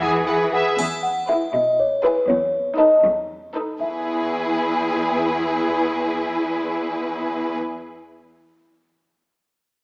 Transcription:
Already playing: E3
0.01 E2 G#4 B4 F#5 G#5
0.27 G#4 B4 E5 F#5
0.52 G#4 B4 E5 F#5
0.79 E2 G#5, triangle
1.03 F#5
1.29 E4 G#4 B4 E5
1.54 B2 D#5
1.80 C#5
2.04 E4 G#4 B4
2.28 E2 C#5
2.78 D#4 A4 B4 D#5
3.04 E2
3.55 D#4 A4 B4
3.80 E2 E4 G#4 B4 E5

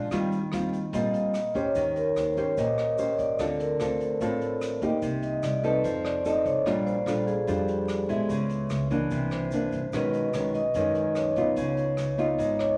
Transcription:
Already playing: A#2 F3 G#3 D4 D5
0.11 D#2 D#3 G3 C4 F4, kick, cross-stick, closed hi-hat, shaker
0.32 closed hi-hat, shaker
0.52 D#2 G3 C4 F4, cross-stick, closed hi-hat, shaker
0.73 closed hi-hat, shaker
0.93 A#1 A#2 G3 C4 F4 D#5, kick, closed hi-hat, shaker
1.13 closed hi-hat, shaker
1.34 cross-stick, closed hi-hat, shaker
1.54 D#2 C#4 G4 C5 C#5, kick, closed hi-hat, shaker
1.75 D#2 D#3, kick, closed hi-hat, shaker
1.96 A#4, closed hi-hat, shaker
2.16 D#2 C5, cross-stick, closed hi-hat, shaker
2.37 C#4 G4 C5, kick, closed hi-hat, shaker
2.57 A#1 A#2 D#5, kick, closed hi-hat, shaker
2.78 cross-stick, closed hi-hat, shaker
2.98 C#4 G4 C5, closed hi-hat, shaker
3.18 D#2 D5, kick, closed hi-hat, shaker
3.39 D2 D3 C4 F4 A4, kick, cross-stick, closed hi-hat, shaker
3.60 A#4, closed hi-hat, shaker
3.80 D2 C4 F4 A4 C5, cross-stick, closed hi-hat, shaker
4.00 closed hi-hat, shaker
4.21 A1 A2 C4 F4 A4, kick, closed hi-hat, shaker
4.41 closed hi-hat, shaker
4.61 cross-stick, closed hi-hat, shaker
4.81 D2 A#3 D#4 G4, kick, closed hi-hat, shaker
5.02 C2 C3, kick, closed hi-hat, shaker
5.22 D#5, closed hi-hat, shaker
5.43 C2 D5, cross-stick, closed hi-hat, shaker
5.63 C4 D#4 A4 B4, closed hi-hat, shaker
5.84 F2 F3 C5, kick, closed hi-hat, shaker
6.04 D5, cross-stick, closed hi-hat, shaker
6.25 C4 D#4 A4 D#5, closed hi-hat, shaker
6.45 C2 C#5, kick, closed hi-hat, shaker
6.66 A#1 A#2 G3 D4 F4 D5, kick, cross-stick, closed hi-hat, shaker
6.86 C5, closed hi-hat, shaker
7.06 A#1 G3 D4 F4 A4, cross-stick, closed hi-hat, shaker
7.27 G#4, closed hi-hat, shaker
7.47 F2 F3 G3 D4 F4 G4, kick, closed hi-hat, shaker
7.68 closed hi-hat, shaker
7.88 cross-stick, closed hi-hat, shaker
8.09 A#1 G#3 B3 E4, kick, closed hi-hat, shaker
8.29 C#2 C#3, kick, closed hi-hat, shaker
8.49 closed hi-hat, shaker
8.70 C#2, cross-stick, closed hi-hat, shaker
8.91 E3 A#3 D4, kick, closed hi-hat, shaker
9.11 C2 C3, kick, closed hi-hat, shaker
9.31 C5, cross-stick, closed hi-hat, shaker
9.51 E3 A#3 D4, closed hi-hat, shaker
9.72 C2, kick, closed hi-hat, shaker
9.93 B1 B2 D#3 G#3 C#4 B4, kick, cross-stick, closed hi-hat, shaker
10.13 closed hi-hat, shaker
10.33 B1 D#3 G#3 C#4, cross-stick, closed hi-hat, shaker
10.54 D#5, closed hi-hat, shaker
10.74 F#2 D#3 G#3 C#4, kick, closed hi-hat, shaker
10.95 closed hi-hat, shaker
11.15 C#5, cross-stick, closed hi-hat, shaker
11.36 B1 B3 D#4 F4, kick, closed hi-hat, shaker
11.56 C#2 C#3, kick, closed hi-hat, shaker
11.77 closed hi-hat, shaker
11.97 C#2, cross-stick, closed hi-hat, shaker
12.18 B3 D#4 F4 D#5, closed hi-hat, shaker
12.38 G#1 G#2, kick, closed hi-hat, shaker
12.59 C#5, cross-stick, closed hi-hat, shaker

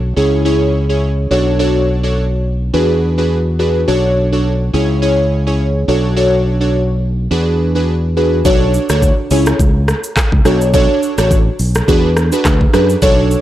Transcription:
Already playing: B1
0.16 C#2 C#4 E4 G#4 C#5
0.45 C#4 E4 G#4 C#5
0.89 C#4 E4 G#4 C#5
1.31 B1 D4 F#4 A4 C#5
1.59 D4 F#4 A4 C#5
2.03 D4 F#4 A4 C#5
2.73 E2 D4 F#4 G#4 B4
3.18 D4 F#4 G#4 B4
3.59 D4 F#4 G#4 B4
3.88 B1 D4 F#4 A4 C#5
4.32 D4 F#4 A4 C#5
4.73 C#2 C#4 E4 G#4 C#5
5.02 C#4 E4 G#4 C#5
5.47 C#4 E4 G#4 C#5
5.88 B1 D4 F#4 A4 C#5
6.16 D4 F#4 A4 C#5
6.61 D4 F#4 A4 C#5
7.31 E2 D4 F#4 G#4 B4
7.75 D4 F#4 G#4 B4
8.17 D4 F#4 G#4 B4
8.45 B1 D4 F#4 A4 C#5, kick, shaker
8.74 shaker
8.89 D2 D4 F#4 A4 C#5, cross-stick, shaker
9.02 kick, shaker
9.31 C#2 C#4 E4 G#4 C#5, open hi-hat, shaker
9.46 cross-stick, shaker
9.60 C#2, kick, shaker
9.88 cross-stick, shaker
10.04 shaker
10.17 kick, cross-stick, clap, shaker
10.32 C#2, kick
10.45 B1 D4 F#4 A4 C#5, cross-stick, shaker
10.61 shaker
10.74 D4 F#4 A4 C#5, kick, shaker
11.03 shaker
11.18 A1 D4 F#4 A4 C#5, cross-stick, shaker
11.31 kick, shaker
11.59 B1, open hi-hat, shaker
11.75 cross-stick, shaker
11.88 E2 D4 F#4 G#4 B4, kick, shaker
12.17 cross-stick, shaker
12.32 D4 F#4 G#4 B4, shaker
12.45 D2, kick, cross-stick, clap, shaker
12.61 kick
12.73 F#2 D4 F#4 G#4 B4, cross-stick, shaker
12.89 shaker
13.02 B1 D4 F#4 A4 C#5, kick, shaker
13.31 shaker

